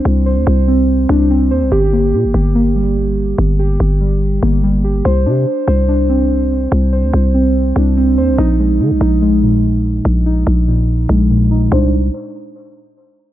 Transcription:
<<
  \new Staff \with { instrumentName = "Synth keys" } { \time 4/4 \key c \minor \tempo 4 = 144 <c' d' c''>8 c''4 c'4 d'8 c'8 c''8 | g'8 bes4 g'8 bes8 g4.~ | g8 g'4 g4 bes8 g8 g'8 | c''8 d'4 c''8 d'8 c'4.~ |
c'8 c''4 c'4 d'8 c'8 c''8 | ees'8 aes4 ees'8 aes8 bes,4.~ | bes,8 ees'4 bes,4 aes8 bes,8 ees'8 | <d' ees' c''>8 r2. r8 | }
  \new Staff \with { instrumentName = "808-style bass" } { \clef bass \time 4/4 \key c \minor c,8. d,16 c,4. c,4 ees,16 c,16 | g,,4 bes,16 g,,16 g,,2~ g,,8 | g,,4 g,,4. g,,4. | c,8 c8 r8 c,2~ c,8 |
c,8. d,16 c,4. c,4 ees,16 c,16 | bes,,4 d16 bes,,16 bes,,2~ bes,,8 | bes,,4 bes,,4. bes,,4. | c,4 r2. | }
>>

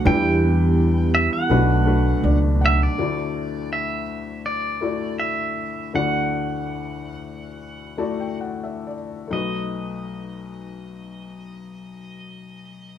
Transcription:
<<
  \new Staff \with { instrumentName = "Pedal steel guitar" } { \time 4/4 \key d \major \tempo 4 = 77 g''4. e''16 fis''4. r16 e''16 d''16~ | d''4 e''4 d''4 e''4 | fis''2. r4 | dis''1 | }
  \new Staff \with { instrumentName = "Felt piano" } { \time 4/4 \key d \major << { r2. d''8 fis''8 | r1 | r2 r8 a''16 g''16 fis''16 e''16 d''8 | r1 | } \\ { <g d' e' b'>4. r8 <a d' fis' b'>8 <a d' fis' b'>4 r8 | <a e' fis' d''>4. r4 <a e' fis' d''>4 r8 | <a e' fis' d''>4. r4 <a e' fis' d''>4 r8 | <a dis' fis' b'>1 | } >> }
  \new Staff \with { instrumentName = "Felt piano" } { \clef bass \time 4/4 \key d \major <e, e>2 <b,, b,>2 | <d, d>1 | <d, d>1 | b,,1 | }
  \new Staff \with { instrumentName = "Vibraphone" } { \time 4/4 \key d \major <e' g'>8 b4. a4 d'8 a8 | r1 | r1 | r1 | }
  \new Staff \with { instrumentName = "Upright bass" } { \clef bass \time 4/4 \key d \major e,2 b,,4 cis,4 | r1 | r1 | r1 | }
>>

